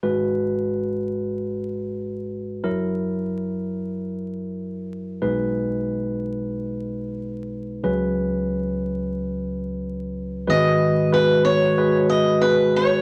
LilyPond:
<<
  \new Staff \with { instrumentName = "Steel-string acoustic guitar" } { \time 4/4 \key gis \minor \tempo 4 = 92 r1 | r1 | r1 | r1 |
dis''4 b'8 cis''4 dis''8 b'8 cis''8 | }
  \new Staff \with { instrumentName = "Tine electric piano" } { \time 4/4 \key gis \minor <gis fis' b'>1 | <fis e' ais'>1 | <gis dis' b'>1 | <fis cis' b'>1 |
<gis fis' b'>8. r16 <gis fis' b'>8. r16 <gis fis' b'>8. r16 <gis fis' b'>8. r16 | }
  \new Staff \with { instrumentName = "Tine electric piano" } { \clef bass \time 4/4 \key gis \minor <gis,, gis,>1 | <fis,, fis,>1 | <b,, b,>1 | <cis, cis>1 |
<gis,, gis,>1 | }
  \new Staff \with { instrumentName = "Fingered electric bass" } { \clef bass \time 4/4 \key gis \minor r1 | r1 | r1 | r1 |
gis,,1 | }
>>